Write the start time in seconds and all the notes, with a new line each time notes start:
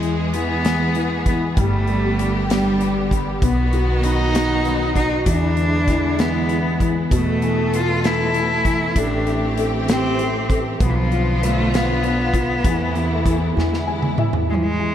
Already playing: E2 E3 G#3 B3 G#4
0.03 E3, closed hi-hat
0.33 E3 B3, closed hi-hat
0.65 E3, snare, closed hi-hat
0.95 E3, closed hi-hat
1.26 E3 B3, kick, closed hi-hat
1.57 G1 D3 G3 A3 G4, kick, closed hi-hat
1.87 G3, closed hi-hat
2.19 G3, closed hi-hat
2.50 G3, snare, closed hi-hat
2.81 G3, closed hi-hat
3.11 G3, kick, closed hi-hat
3.42 B1 D#3 F#3 B3 F#4, kick, closed hi-hat
3.73 F#4, closed hi-hat
4.03 B3 D#4, closed hi-hat
4.35 F#4, snare, closed hi-hat
4.65 B3, closed hi-hat
4.96 D#4 F#4, kick, closed hi-hat
5.26 E2 D3 E3 G#3 B3 D4 E4, kick, closed hi-hat
5.57 E3, closed hi-hat
5.88 E3, kick, snare, closed hi-hat
6.19 E3 B3, snare, closed hi-hat
6.49 E3, closed hi-hat
6.80 E3, kick, closed hi-hat
7.11 E2 B2 A3 A4, kick, closed hi-hat
7.42 E3, closed hi-hat
7.73 F4, closed hi-hat
8.04 E3 E4, snare, closed hi-hat
8.34 E3, closed hi-hat
8.65 E3, kick, closed hi-hat
8.96 A1 E3 A3 C4 D4 G4, kick, closed hi-hat
9.26 A3, closed hi-hat
9.57 A3, closed hi-hat
9.88 A3 C4, snare, closed hi-hat
10.19 A3, closed hi-hat
10.50 A3, kick, closed hi-hat
10.80 B1 D3 F3 B3 F4, kick, closed hi-hat
10.90 E3
10.95 F3
11.12 F4, closed hi-hat
11.41 A3 B3, snare, closed hi-hat
11.73 B3 F4, snare, closed hi-hat
12.03 B3, closed hi-hat
12.34 F4, kick, closed hi-hat
12.64 E2 C3 E3 A3 E4, kick, closed hi-hat
12.95 E3, closed hi-hat
13.25 E3, kick, closed hi-hat
13.55 E2 D3 E3 G#3 B3 E4, snare
13.73 snare
13.87 E3 G#5
14.02 mid tom
14.18 E3 E5, mid tom
14.33 floor tom
14.49 E3 G#3
14.55 F3
14.63 G#3
14.79 E3